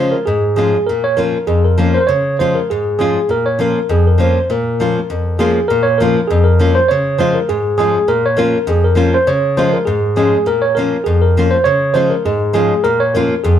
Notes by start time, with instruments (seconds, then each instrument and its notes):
Already playing: nylon-string guitar C#3 F3 G#3, tine electric piano C5
0.00 nylon-string guitar C#4 F4
0.12 tine electric piano A#4
0.26 nylon-string guitar G#2, tine electric piano G#4
0.56 nylon-string guitar F3 G#3 C#4 F4, tine electric piano G#4
0.87 nylon-string guitar A#2, tine electric piano A#4
1.04 tine electric piano C#5
1.17 nylon-string guitar F3 A#3 C#4 F4, tine electric piano A#4
1.47 nylon-string guitar F2, tine electric piano G#4
1.64 tine electric piano A#4
1.78 nylon-string guitar F3 A#3 C#4 F4
1.94 tine electric piano A#4 C5
2.01 tine electric piano C5
2.07 nylon-string guitar C#3, tine electric piano C#5
2.39 nylon-string guitar F3 G#3 C#4 F4, tine electric piano C5
2.55 tine electric piano A#4
2.70 nylon-string guitar G#2, tine electric piano G#4
2.99 nylon-string guitar F3 G#3 C#4 F4, tine electric piano G#4
3.29 nylon-string guitar A#2, tine electric piano A#4
3.46 tine electric piano C#5
3.59 nylon-string guitar F3 A#3 C#4 F4, tine electric piano A#4
3.89 nylon-string guitar F2, tine electric piano G#4
4.07 tine electric piano A#4
4.18 nylon-string guitar F3 A#3 C#4 F4, tine electric piano C5
4.50 nylon-string guitar A#2, tine electric piano A#4
4.80 nylon-string guitar F3 A#3 C#4 F4
5.10 nylon-string guitar F2
5.39 nylon-string guitar F3 A#3 C#4 F4, tine electric piano G#4
5.68 nylon-string guitar A#2, tine electric piano A#4
5.83 tine electric piano C#5
5.98 nylon-string guitar F3 A#3 C#4 F4, tine electric piano A#4
6.28 nylon-string guitar F2, tine electric piano G#4
6.44 tine electric piano A#4
6.59 nylon-string guitar F3 A#3 C#4 F4
6.75 tine electric piano C5
6.88 nylon-string guitar C#3, tine electric piano C#5
7.18 nylon-string guitar F3 G#3 C#4 F4, tine electric piano C5
7.34 tine electric piano A#4
7.49 nylon-string guitar G#2, tine electric piano G#4
7.78 nylon-string guitar F3 G#3 C#4 F4, tine electric piano G#4
8.08 nylon-string guitar A#2, tine electric piano A#4
8.26 tine electric piano C#5
8.37 nylon-string guitar F3 A#3 C#4 F4, tine electric piano A#4
8.67 nylon-string guitar F2, tine electric piano G#4
8.84 tine electric piano A#4
8.95 nylon-string guitar F3 A#3 C#4 F4
9.14 tine electric piano C5
9.27 nylon-string guitar C#3, tine electric piano C#5
9.57 nylon-string guitar F3 G#3 C#4 F4, tine electric piano C5
9.73 tine electric piano A#4
9.85 nylon-string guitar G#2, tine electric piano G#4
10.16 nylon-string guitar F3 G#3 C#4 F4, tine electric piano G#4
10.46 nylon-string guitar A#2, tine electric piano A#4
10.62 tine electric piano C#5
10.75 nylon-string guitar F3 A#3 C#4 F4, tine electric piano A#4
11.04 nylon-string guitar F2, tine electric piano G#4
11.22 tine electric piano A#4
11.37 nylon-string guitar F3 A#3 C#4 F4
11.51 tine electric piano C5
11.64 nylon-string guitar C#3, tine electric piano C#5
11.94 nylon-string guitar F3 G#3 C#4 F4, tine electric piano C5
12.10 tine electric piano A#4
12.25 nylon-string guitar G#2, tine electric piano G#4
12.53 nylon-string guitar F3 G#3 C#4 F4, tine electric piano G#4
12.84 nylon-string guitar A#2, tine electric piano A#4
13.00 tine electric piano C#5
13.14 nylon-string guitar F3 A#3 C#4 F4, tine electric piano A#4
13.44 nylon-string guitar F2, tine electric piano G#4